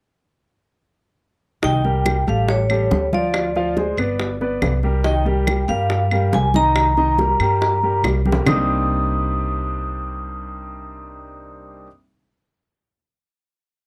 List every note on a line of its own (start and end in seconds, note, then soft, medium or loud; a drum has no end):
1.62 2.23 C2 medium
1.62 1.80 D#3 medium
1.62 1.81 D#4 medium
1.62 1.81 D#5 medium
1.62 2.24 G5 medium
1.62 high bongo medium
1.62 high conga soft
1.84 2.20 G3 medium
1.84 2.20 G4 medium
1.84 2.20 A#4 medium
1.84 high bongo soft
1.84 high conga soft
2.06 high bongo medium
2.06 high conga medium
2.06 claves medium
2.27 2.88 A1 medium
2.27 2.62 G3 medium
2.27 2.63 G4 medium
2.27 2.63 A4 medium
2.27 2.48 F5 medium
2.27 high bongo soft
2.27 high conga soft
2.49 3.09 C#5 medium
2.49 high bongo medium
2.49 high conga soft
2.70 3.05 G3 medium
2.70 3.05 G4 medium
2.70 3.06 A4 medium
2.70 high conga soft
2.70 claves medium
2.91 3.92 D2 medium
2.91 high bongo soft
2.91 low bongo medium
2.91 high conga medium
3.13 3.48 F3 medium
3.13 3.48 F4 medium
3.13 3.95 D5 medium
3.13 3.48 F5 medium
3.13 high bongo soft
3.13 high conga medium
3.34 high bongo medium
3.34 high conga soft
3.34 claves medium
3.56 3.73 F3 medium
3.56 3.74 F4 medium
3.56 3.74 F5 medium
3.56 high bongo soft
3.56 high conga soft
3.77 3.95 G#3 medium
3.77 3.95 G#4 medium
3.77 3.95 C5 medium
3.77 high bongo medium
3.77 high conga medium
3.97 4.58 G1 medium
3.97 4.34 B3 medium
3.97 4.34 B4 medium
3.97 4.34 D5 medium
3.97 high bongo soft
3.97 claves medium
4.20 high bongo medium
4.20 high conga soft
4.41 4.76 B3 medium
4.41 4.76 B4 medium
4.41 4.76 D5 medium
4.41 high conga soft
4.62 5.63 C2 medium
4.62 high bongo soft
4.62 low bongo medium
4.62 high conga soft
4.62 claves medium
4.83 5.01 G3 medium
4.83 5.01 G4 medium
4.83 5.02 A#4 medium
4.83 high bongo soft
5.04 5.22 D#3 medium
5.04 5.22 D#4 medium
5.04 5.23 D#5 medium
5.04 5.71 G5 medium
5.04 high bongo medium
5.04 high conga soft
5.25 5.61 G3 medium
5.25 5.61 G4 medium
5.25 5.61 A#4 medium
5.25 high bongo soft
5.25 high conga soft
5.47 high bongo soft
5.47 high conga medium
5.47 claves medium
5.68 6.29 G2 medium
5.68 6.04 G3 medium
5.68 6.04 G4 medium
5.68 6.04 A#4 medium
5.68 6.35 F5 medium
5.68 high bongo soft
5.68 high conga soft
5.90 high bongo medium
5.90 high conga soft
6.11 6.47 G3 medium
6.11 6.47 G4 medium
6.11 6.47 A#4 medium
6.11 high conga soft
6.11 claves medium
6.32 7.33 C2 medium
6.32 6.56 G#5 loud
6.32 high bongo soft
6.32 low bongo medium
6.32 high conga medium
6.54 6.90 D#3 medium
6.54 6.90 D#4 medium
6.54 6.90 D#5 medium
6.54 8.01 A#5 loud
6.54 high bongo soft
6.54 high conga medium
6.75 high bongo medium
6.75 high conga soft
6.75 claves medium
6.97 7.15 D#3 medium
6.97 7.15 D#4 medium
6.97 7.15 D#5 medium
6.97 high bongo soft
6.97 high conga soft
7.18 7.37 G3 medium
7.18 7.37 G4 medium
7.18 7.37 A#4 medium
7.18 high bongo medium
7.18 high conga soft
7.40 8.00 G2 medium
7.40 7.75 G3 medium
7.40 7.76 G4 medium
7.40 7.76 A#4 medium
7.40 high bongo soft
7.40 claves medium
7.61 high bongo medium
7.61 high conga soft
7.83 8.18 G3 medium
7.83 8.18 G4 medium
7.83 8.18 A#4 medium
7.83 high conga soft
8.03 8.41 C2 medium
8.03 high bongo medium
8.03 high conga soft
8.03 claves medium
8.26 8.43 G3 medium
8.26 8.43 G4 medium
8.26 8.43 A#4 medium
8.26 high conga medium
8.32 low bongo loud
8.46 11.85 C2 medium
8.46 11.86 C3 medium
8.46 11.86 G3 medium
8.46 11.86 A#3 medium
8.46 11.86 C4 medium
8.46 11.87 D4 medium
8.46 11.87 D#4 medium
8.46 11.88 D#6 medium
8.46 low bongo medium
8.46 low conga medium
8.46 claves medium